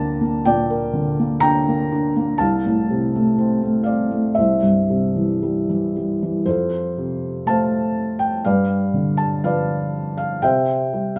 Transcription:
Already playing: D2 A#2 D3 A#3 D4 D5 G5 A5 A#5
0.21 A#3
0.45 A#2 D5 G5
0.70 A#4
0.93 D3
1.19 A#3
1.40 D4 G5 A#5
1.68 A#3
1.92 D4
2.16 A#3
2.38 C2 F5 A5
2.65 A2
2.90 C3
3.16 A3
3.38 C4
3.62 A3
3.83 C4 D5 F5
4.11 A3
4.35 C2 C5 E5
4.63 G2
4.90 C3
5.16 E3
5.42 G3
5.69 E3
5.97 G3
6.22 E3
6.46 F2 F4 A4 C5
6.98 C3
7.46 A3 C5 F5 A5
8.19 G5
8.45 G2 B4 D5 F5
8.94 D3
9.17 A5
9.44 F3 B4 D5 F5
10.17 F5
10.42 C3 C5 E5 G5
10.93 G3
11.16 F5

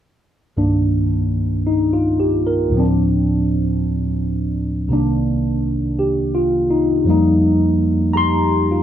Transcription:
0.57 C2 G2 D#3 A#3 D4
1.67 D#4
1.93 F4
2.20 G4
2.47 A#4
2.69 D2 A2
2.74 F3 C4
2.80 D4
4.88 C2 C3 D#3 A#3
4.93 D4
5.99 G4
6.35 F4
6.70 D#4
7.04 F2 F3 G3
7.09 A#3 D#4
8.13 G4 A#5 C6
8.71 F4

